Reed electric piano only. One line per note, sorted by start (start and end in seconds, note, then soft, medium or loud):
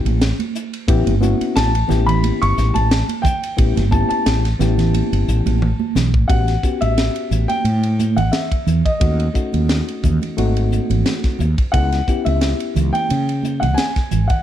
0.00 0.18 B3 medium
0.00 0.18 C#4 medium
0.00 0.18 E4 medium
0.00 0.19 G4 medium
0.88 1.13 B3 medium
0.88 1.14 C#4 medium
0.88 1.14 E4 medium
0.88 1.14 G4 medium
1.21 1.72 B3 medium
1.21 1.72 C#4 medium
1.21 1.72 E4 medium
1.21 1.73 F#4 medium
1.88 2.88 B3 medium
1.88 2.88 C#4 medium
1.88 2.88 E4 medium
1.88 2.89 G4 medium
3.57 3.83 B3 medium
3.57 3.83 C#4 medium
3.57 3.83 E4 medium
3.57 3.84 G4 medium
3.91 4.43 B3 medium
3.91 4.43 C#4 medium
3.91 4.43 E4 medium
3.91 4.44 G4 medium
4.59 5.59 B3 medium
4.59 5.59 C#4 medium
4.59 5.60 E4 medium
4.59 5.60 G4 medium
6.28 6.54 B3 medium
6.28 6.55 C#4 medium
6.28 6.55 F#4 medium
6.28 6.55 G4 medium
6.63 7.63 B3 medium
6.63 7.63 C#4 medium
6.63 7.63 F#4 medium
6.63 7.63 G4 medium
9.00 9.26 A3 medium
9.00 9.26 C#4 medium
9.00 9.27 D#4 medium
9.00 9.27 F#4 medium
9.33 10.34 A3 medium
9.33 10.35 C#4 medium
9.33 10.35 D#4 medium
9.33 10.35 F#4 medium
10.37 11.47 A3 medium
10.37 11.47 C4 medium
10.37 11.47 D#4 medium
10.37 11.47 F#4 medium
11.73 11.99 B3 medium
11.73 11.99 C#4 medium
11.73 11.99 E4 medium
11.73 12.00 G#4 medium
12.08 13.07 B3 medium
12.08 13.08 C#4 soft
12.08 13.08 E4 medium
12.08 13.08 G4 medium